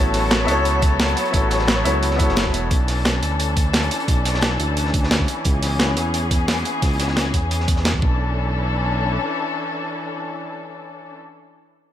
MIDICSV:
0, 0, Header, 1, 5, 480
1, 0, Start_track
1, 0, Tempo, 342857
1, 1873, Time_signature, 4, 2, 24, 8
1, 16699, End_track
2, 0, Start_track
2, 0, Title_t, "Grand piano"
2, 0, Program_c, 0, 0
2, 0, Note_on_c, 0, 59, 75
2, 0, Note_on_c, 0, 64, 66
2, 0, Note_on_c, 0, 66, 66
2, 0, Note_on_c, 0, 69, 66
2, 2, Note_on_c, 0, 73, 78
2, 211, Control_c, 0, 64, 127
2, 605, Note_off_c, 0, 59, 0
2, 626, Note_on_c, 0, 59, 92
2, 629, Note_off_c, 0, 64, 0
2, 646, Note_off_c, 0, 66, 0
2, 650, Note_on_c, 0, 64, 84
2, 657, Note_off_c, 0, 69, 0
2, 669, Note_off_c, 0, 73, 0
2, 673, Note_on_c, 0, 66, 83
2, 696, Note_on_c, 0, 69, 91
2, 720, Note_on_c, 0, 73, 108
2, 1806, Note_off_c, 0, 59, 0
2, 1827, Note_on_c, 0, 59, 76
2, 1830, Note_off_c, 0, 64, 0
2, 1845, Note_off_c, 0, 66, 0
2, 1851, Note_on_c, 0, 64, 70
2, 1856, Note_off_c, 0, 69, 0
2, 1868, Note_off_c, 0, 73, 0
2, 1875, Note_on_c, 0, 66, 71
2, 1898, Note_on_c, 0, 69, 70
2, 1921, Note_on_c, 0, 73, 83
2, 2542, Note_off_c, 0, 59, 0
2, 2554, Note_off_c, 0, 64, 0
2, 2566, Note_off_c, 0, 66, 0
2, 2573, Note_on_c, 0, 59, 82
2, 2578, Note_off_c, 0, 69, 0
2, 2584, Note_on_c, 0, 64, 75
2, 2589, Note_off_c, 0, 73, 0
2, 2595, Note_on_c, 0, 66, 74
2, 2607, Note_on_c, 0, 69, 72
2, 2619, Note_on_c, 0, 73, 91
2, 3007, Note_off_c, 0, 59, 0
2, 3028, Note_on_c, 0, 59, 86
2, 3030, Note_off_c, 0, 64, 0
2, 3051, Note_off_c, 0, 66, 0
2, 3051, Note_on_c, 0, 64, 79
2, 3056, Note_off_c, 0, 69, 0
2, 3063, Note_off_c, 0, 73, 0
2, 3074, Note_on_c, 0, 66, 80
2, 3098, Note_on_c, 0, 69, 79
2, 3120, Note_on_c, 0, 73, 95
2, 3742, Note_off_c, 0, 59, 0
2, 3754, Note_off_c, 0, 64, 0
2, 3766, Note_off_c, 0, 66, 0
2, 3777, Note_off_c, 0, 69, 0
2, 3789, Note_off_c, 0, 73, 0
2, 3814, Control_c, 0, 64, 0
2, 16699, End_track
3, 0, Start_track
3, 0, Title_t, "String section"
3, 0, Program_c, 1, 48
3, 0, Note_on_c, 1, 54, 81
3, 0, Note_on_c, 1, 59, 73
3, 0, Note_on_c, 1, 69, 91
3, 0, Note_on_c, 1, 73, 74
3, 3736, Note_off_c, 1, 73, 0
3, 3737, Note_off_c, 1, 69, 0
3, 3753, Note_off_c, 1, 59, 0
3, 3755, Note_off_c, 1, 54, 0
3, 3792, Note_on_c, 1, 62, 71
3, 3792, Note_on_c, 1, 69, 86
3, 3793, Note_on_c, 1, 52, 75
3, 3793, Note_on_c, 1, 61, 71
3, 7594, Note_off_c, 1, 62, 0
3, 7594, Note_off_c, 1, 69, 0
3, 7634, Note_on_c, 1, 59, 70
3, 7636, Note_on_c, 1, 68, 85
3, 11177, Note_off_c, 1, 52, 0
3, 11177, Note_off_c, 1, 61, 0
3, 11197, Note_off_c, 1, 59, 0
3, 11198, Note_off_c, 1, 68, 0
3, 11232, Note_on_c, 1, 52, 73
3, 11233, Note_on_c, 1, 61, 71
3, 11233, Note_on_c, 1, 62, 71
3, 11233, Note_on_c, 1, 69, 84
3, 15629, Note_off_c, 1, 52, 0
3, 15629, Note_off_c, 1, 61, 0
3, 15629, Note_off_c, 1, 69, 0
3, 15630, Note_off_c, 1, 62, 0
3, 16699, End_track
4, 0, Start_track
4, 0, Title_t, "Analog synth bass"
4, 0, Program_c, 2, 38
4, 0, Note_on_c, 2, 33, 97
4, 654, Note_off_c, 2, 33, 0
4, 673, Note_on_c, 2, 37, 84
4, 1614, Note_off_c, 2, 37, 0
4, 1873, Note_on_c, 2, 33, 97
4, 2574, Note_off_c, 2, 33, 0
4, 2593, Note_on_c, 2, 37, 83
4, 3189, Note_off_c, 2, 37, 0
4, 3198, Note_on_c, 2, 30, 93
4, 3535, Note_off_c, 2, 30, 0
4, 3554, Note_on_c, 2, 28, 88
4, 3770, Note_off_c, 2, 28, 0
4, 3793, Note_on_c, 2, 35, 99
4, 4494, Note_off_c, 2, 35, 0
4, 4512, Note_on_c, 2, 38, 80
4, 5454, Note_off_c, 2, 38, 0
4, 5713, Note_on_c, 2, 35, 94
4, 6414, Note_off_c, 2, 35, 0
4, 6435, Note_on_c, 2, 38, 83
4, 7375, Note_off_c, 2, 38, 0
4, 7634, Note_on_c, 2, 37, 96
4, 8335, Note_off_c, 2, 37, 0
4, 8353, Note_on_c, 2, 40, 79
4, 9294, Note_off_c, 2, 40, 0
4, 9553, Note_on_c, 2, 37, 94
4, 10254, Note_off_c, 2, 37, 0
4, 10272, Note_on_c, 2, 40, 80
4, 11214, Note_off_c, 2, 40, 0
4, 11231, Note_on_c, 2, 35, 93
4, 12856, Note_off_c, 2, 35, 0
4, 16699, End_track
5, 0, Start_track
5, 0, Title_t, "Drums"
5, 191, Note_on_c, 9, 46, 77
5, 195, Note_on_c, 9, 42, 83
5, 198, Note_on_c, 9, 38, 42
5, 331, Note_off_c, 9, 46, 0
5, 335, Note_off_c, 9, 42, 0
5, 338, Note_off_c, 9, 38, 0
5, 430, Note_on_c, 9, 42, 77
5, 431, Note_on_c, 9, 38, 115
5, 435, Note_off_c, 9, 38, 0
5, 435, Note_off_c, 9, 42, 0
5, 435, Note_on_c, 9, 38, 119
5, 435, Note_on_c, 9, 42, 71
5, 575, Note_off_c, 9, 38, 0
5, 575, Note_off_c, 9, 42, 0
5, 674, Note_on_c, 9, 42, 91
5, 675, Note_off_c, 9, 42, 0
5, 675, Note_on_c, 9, 42, 71
5, 815, Note_off_c, 9, 42, 0
5, 914, Note_on_c, 9, 42, 70
5, 916, Note_off_c, 9, 42, 0
5, 916, Note_on_c, 9, 42, 77
5, 1056, Note_off_c, 9, 42, 0
5, 1147, Note_on_c, 9, 42, 64
5, 1153, Note_on_c, 9, 36, 105
5, 1155, Note_off_c, 9, 42, 0
5, 1155, Note_on_c, 9, 42, 85
5, 1293, Note_off_c, 9, 36, 0
5, 1295, Note_off_c, 9, 42, 0
5, 1395, Note_on_c, 9, 38, 120
5, 1395, Note_on_c, 9, 42, 75
5, 1396, Note_off_c, 9, 42, 0
5, 1396, Note_on_c, 9, 42, 76
5, 1400, Note_off_c, 9, 38, 0
5, 1400, Note_on_c, 9, 38, 112
5, 1511, Note_off_c, 9, 42, 0
5, 1511, Note_on_c, 9, 42, 40
5, 1540, Note_off_c, 9, 38, 0
5, 1636, Note_off_c, 9, 42, 0
5, 1636, Note_on_c, 9, 42, 85
5, 1648, Note_off_c, 9, 42, 0
5, 1648, Note_on_c, 9, 42, 68
5, 1753, Note_off_c, 9, 42, 0
5, 1753, Note_on_c, 9, 42, 41
5, 1867, Note_off_c, 9, 42, 0
5, 1867, Note_on_c, 9, 42, 84
5, 1874, Note_on_c, 9, 36, 113
5, 1877, Note_off_c, 9, 42, 0
5, 1877, Note_on_c, 9, 42, 74
5, 2014, Note_off_c, 9, 36, 0
5, 2017, Note_off_c, 9, 42, 0
5, 2109, Note_on_c, 9, 42, 61
5, 2112, Note_on_c, 9, 38, 50
5, 2116, Note_off_c, 9, 42, 0
5, 2116, Note_on_c, 9, 42, 85
5, 2228, Note_off_c, 9, 38, 0
5, 2228, Note_on_c, 9, 38, 54
5, 2256, Note_off_c, 9, 42, 0
5, 2346, Note_off_c, 9, 38, 0
5, 2346, Note_on_c, 9, 38, 110
5, 2348, Note_on_c, 9, 42, 75
5, 2356, Note_off_c, 9, 38, 0
5, 2356, Note_off_c, 9, 42, 0
5, 2356, Note_on_c, 9, 38, 113
5, 2356, Note_on_c, 9, 42, 69
5, 2496, Note_off_c, 9, 38, 0
5, 2496, Note_off_c, 9, 42, 0
5, 2595, Note_on_c, 9, 42, 68
5, 2597, Note_off_c, 9, 42, 0
5, 2597, Note_on_c, 9, 42, 89
5, 2737, Note_off_c, 9, 42, 0
5, 2837, Note_on_c, 9, 42, 72
5, 2840, Note_off_c, 9, 42, 0
5, 2840, Note_on_c, 9, 42, 78
5, 2953, Note_on_c, 9, 38, 39
5, 2980, Note_off_c, 9, 42, 0
5, 3067, Note_on_c, 9, 42, 75
5, 3073, Note_on_c, 9, 36, 104
5, 3076, Note_off_c, 9, 42, 0
5, 3076, Note_on_c, 9, 42, 79
5, 3093, Note_off_c, 9, 38, 0
5, 3203, Note_on_c, 9, 38, 46
5, 3213, Note_off_c, 9, 36, 0
5, 3216, Note_off_c, 9, 42, 0
5, 3310, Note_on_c, 9, 42, 89
5, 3318, Note_off_c, 9, 38, 0
5, 3318, Note_off_c, 9, 42, 0
5, 3318, Note_on_c, 9, 38, 116
5, 3318, Note_on_c, 9, 42, 70
5, 3320, Note_off_c, 9, 38, 0
5, 3320, Note_on_c, 9, 38, 101
5, 3437, Note_on_c, 9, 36, 59
5, 3438, Note_off_c, 9, 38, 0
5, 3438, Note_on_c, 9, 38, 35
5, 3458, Note_off_c, 9, 42, 0
5, 3555, Note_on_c, 9, 42, 83
5, 3577, Note_off_c, 9, 36, 0
5, 3578, Note_off_c, 9, 38, 0
5, 3695, Note_off_c, 9, 42, 0
5, 3790, Note_on_c, 9, 42, 87
5, 3793, Note_on_c, 9, 36, 113
5, 3794, Note_off_c, 9, 42, 0
5, 3794, Note_on_c, 9, 42, 73
5, 3933, Note_off_c, 9, 36, 0
5, 3934, Note_off_c, 9, 42, 0
5, 4030, Note_on_c, 9, 46, 72
5, 4036, Note_on_c, 9, 42, 80
5, 4037, Note_on_c, 9, 38, 41
5, 4170, Note_off_c, 9, 46, 0
5, 4176, Note_off_c, 9, 42, 0
5, 4177, Note_off_c, 9, 38, 0
5, 4270, Note_on_c, 9, 42, 82
5, 4271, Note_on_c, 9, 38, 105
5, 4275, Note_off_c, 9, 38, 0
5, 4275, Note_off_c, 9, 42, 0
5, 4275, Note_on_c, 9, 38, 111
5, 4275, Note_on_c, 9, 42, 69
5, 4415, Note_off_c, 9, 38, 0
5, 4415, Note_off_c, 9, 42, 0
5, 4515, Note_on_c, 9, 42, 64
5, 4517, Note_off_c, 9, 42, 0
5, 4517, Note_on_c, 9, 42, 87
5, 4657, Note_off_c, 9, 42, 0
5, 4752, Note_on_c, 9, 42, 92
5, 4757, Note_off_c, 9, 42, 0
5, 4757, Note_on_c, 9, 42, 72
5, 4897, Note_off_c, 9, 42, 0
5, 4992, Note_on_c, 9, 42, 72
5, 4993, Note_on_c, 9, 36, 95
5, 4995, Note_off_c, 9, 42, 0
5, 4995, Note_on_c, 9, 42, 80
5, 5133, Note_off_c, 9, 36, 0
5, 5135, Note_off_c, 9, 42, 0
5, 5226, Note_on_c, 9, 42, 85
5, 5229, Note_on_c, 9, 38, 113
5, 5238, Note_off_c, 9, 38, 0
5, 5238, Note_off_c, 9, 42, 0
5, 5238, Note_on_c, 9, 38, 112
5, 5238, Note_on_c, 9, 42, 68
5, 5359, Note_off_c, 9, 42, 0
5, 5359, Note_on_c, 9, 42, 45
5, 5378, Note_off_c, 9, 38, 0
5, 5477, Note_off_c, 9, 42, 0
5, 5477, Note_on_c, 9, 42, 82
5, 5480, Note_off_c, 9, 42, 0
5, 5480, Note_on_c, 9, 42, 64
5, 5600, Note_off_c, 9, 42, 0
5, 5600, Note_on_c, 9, 42, 41
5, 5711, Note_off_c, 9, 42, 0
5, 5711, Note_on_c, 9, 42, 83
5, 5713, Note_on_c, 9, 36, 105
5, 5717, Note_off_c, 9, 42, 0
5, 5717, Note_on_c, 9, 42, 75
5, 5853, Note_off_c, 9, 36, 0
5, 5857, Note_off_c, 9, 42, 0
5, 5955, Note_on_c, 9, 38, 47
5, 5956, Note_on_c, 9, 42, 85
5, 6080, Note_off_c, 9, 38, 0
5, 6080, Note_on_c, 9, 38, 55
5, 6096, Note_off_c, 9, 42, 0
5, 6179, Note_on_c, 9, 42, 75
5, 6195, Note_off_c, 9, 38, 0
5, 6195, Note_off_c, 9, 42, 0
5, 6195, Note_on_c, 9, 38, 103
5, 6195, Note_on_c, 9, 42, 68
5, 6198, Note_off_c, 9, 38, 0
5, 6198, Note_on_c, 9, 38, 107
5, 6335, Note_off_c, 9, 42, 0
5, 6338, Note_off_c, 9, 38, 0
5, 6433, Note_on_c, 9, 42, 62
5, 6436, Note_off_c, 9, 42, 0
5, 6436, Note_on_c, 9, 42, 92
5, 6576, Note_off_c, 9, 42, 0
5, 6675, Note_on_c, 9, 42, 74
5, 6676, Note_off_c, 9, 42, 0
5, 6676, Note_on_c, 9, 42, 84
5, 6794, Note_on_c, 9, 38, 39
5, 6816, Note_off_c, 9, 42, 0
5, 6913, Note_on_c, 9, 36, 96
5, 6916, Note_on_c, 9, 42, 86
5, 6927, Note_off_c, 9, 42, 0
5, 6927, Note_on_c, 9, 42, 64
5, 6934, Note_off_c, 9, 38, 0
5, 7050, Note_on_c, 9, 38, 52
5, 7053, Note_off_c, 9, 36, 0
5, 7067, Note_off_c, 9, 42, 0
5, 7152, Note_off_c, 9, 38, 0
5, 7152, Note_on_c, 9, 38, 103
5, 7153, Note_on_c, 9, 42, 76
5, 7154, Note_off_c, 9, 38, 0
5, 7154, Note_off_c, 9, 42, 0
5, 7154, Note_on_c, 9, 38, 110
5, 7154, Note_on_c, 9, 42, 72
5, 7278, Note_on_c, 9, 36, 55
5, 7280, Note_off_c, 9, 38, 0
5, 7280, Note_on_c, 9, 38, 34
5, 7294, Note_off_c, 9, 42, 0
5, 7393, Note_on_c, 9, 42, 56
5, 7394, Note_off_c, 9, 42, 0
5, 7394, Note_on_c, 9, 42, 85
5, 7418, Note_off_c, 9, 36, 0
5, 7420, Note_off_c, 9, 38, 0
5, 7534, Note_off_c, 9, 42, 0
5, 7624, Note_on_c, 9, 42, 80
5, 7634, Note_on_c, 9, 36, 106
5, 7636, Note_off_c, 9, 42, 0
5, 7636, Note_on_c, 9, 42, 79
5, 7774, Note_off_c, 9, 36, 0
5, 7776, Note_off_c, 9, 42, 0
5, 7874, Note_on_c, 9, 38, 45
5, 7875, Note_on_c, 9, 42, 82
5, 7876, Note_on_c, 9, 46, 78
5, 8014, Note_off_c, 9, 38, 0
5, 8015, Note_off_c, 9, 42, 0
5, 8016, Note_off_c, 9, 46, 0
5, 8111, Note_on_c, 9, 38, 111
5, 8116, Note_off_c, 9, 38, 0
5, 8116, Note_on_c, 9, 38, 103
5, 8116, Note_on_c, 9, 42, 85
5, 8256, Note_off_c, 9, 38, 0
5, 8256, Note_off_c, 9, 42, 0
5, 8355, Note_on_c, 9, 42, 89
5, 8358, Note_off_c, 9, 42, 0
5, 8358, Note_on_c, 9, 42, 63
5, 8498, Note_off_c, 9, 42, 0
5, 8594, Note_on_c, 9, 42, 84
5, 8595, Note_off_c, 9, 42, 0
5, 8595, Note_on_c, 9, 42, 74
5, 8735, Note_off_c, 9, 42, 0
5, 8834, Note_on_c, 9, 36, 94
5, 8835, Note_on_c, 9, 42, 90
5, 8838, Note_off_c, 9, 42, 0
5, 8838, Note_on_c, 9, 42, 59
5, 8974, Note_off_c, 9, 36, 0
5, 8978, Note_off_c, 9, 42, 0
5, 9072, Note_on_c, 9, 42, 83
5, 9075, Note_off_c, 9, 42, 0
5, 9075, Note_on_c, 9, 38, 105
5, 9075, Note_on_c, 9, 42, 78
5, 9083, Note_off_c, 9, 38, 0
5, 9083, Note_on_c, 9, 38, 100
5, 9215, Note_off_c, 9, 42, 0
5, 9223, Note_off_c, 9, 38, 0
5, 9311, Note_on_c, 9, 42, 70
5, 9316, Note_off_c, 9, 42, 0
5, 9316, Note_on_c, 9, 42, 86
5, 9456, Note_off_c, 9, 42, 0
5, 9551, Note_on_c, 9, 38, 39
5, 9553, Note_on_c, 9, 36, 106
5, 9554, Note_on_c, 9, 42, 79
5, 9554, Note_on_c, 9, 46, 77
5, 9691, Note_off_c, 9, 38, 0
5, 9693, Note_off_c, 9, 36, 0
5, 9694, Note_off_c, 9, 42, 0
5, 9694, Note_off_c, 9, 46, 0
5, 9794, Note_on_c, 9, 38, 48
5, 9795, Note_on_c, 9, 42, 87
5, 9801, Note_off_c, 9, 42, 0
5, 9801, Note_on_c, 9, 42, 57
5, 9909, Note_off_c, 9, 38, 0
5, 9909, Note_on_c, 9, 38, 48
5, 9941, Note_off_c, 9, 42, 0
5, 10034, Note_off_c, 9, 38, 0
5, 10034, Note_on_c, 9, 38, 102
5, 10034, Note_on_c, 9, 42, 74
5, 10035, Note_off_c, 9, 38, 0
5, 10035, Note_on_c, 9, 38, 95
5, 10047, Note_off_c, 9, 42, 0
5, 10047, Note_on_c, 9, 42, 80
5, 10175, Note_off_c, 9, 38, 0
5, 10187, Note_off_c, 9, 42, 0
5, 10273, Note_on_c, 9, 36, 52
5, 10274, Note_on_c, 9, 42, 91
5, 10413, Note_off_c, 9, 36, 0
5, 10414, Note_off_c, 9, 42, 0
5, 10515, Note_on_c, 9, 42, 76
5, 10516, Note_off_c, 9, 42, 0
5, 10516, Note_on_c, 9, 42, 90
5, 10640, Note_on_c, 9, 38, 37
5, 10656, Note_off_c, 9, 42, 0
5, 10748, Note_on_c, 9, 42, 57
5, 10752, Note_on_c, 9, 36, 93
5, 10753, Note_off_c, 9, 42, 0
5, 10753, Note_on_c, 9, 42, 87
5, 10780, Note_off_c, 9, 38, 0
5, 10869, Note_on_c, 9, 38, 46
5, 10892, Note_off_c, 9, 36, 0
5, 10893, Note_off_c, 9, 42, 0
5, 10993, Note_off_c, 9, 38, 0
5, 10993, Note_on_c, 9, 38, 104
5, 10993, Note_on_c, 9, 42, 75
5, 10994, Note_off_c, 9, 42, 0
5, 10994, Note_on_c, 9, 42, 87
5, 10996, Note_off_c, 9, 38, 0
5, 10996, Note_on_c, 9, 38, 110
5, 11115, Note_on_c, 9, 36, 52
5, 11134, Note_off_c, 9, 42, 0
5, 11136, Note_off_c, 9, 38, 0
5, 11231, Note_off_c, 9, 36, 0
5, 11231, Note_on_c, 9, 36, 105
5, 11371, Note_off_c, 9, 36, 0
5, 16699, End_track
0, 0, End_of_file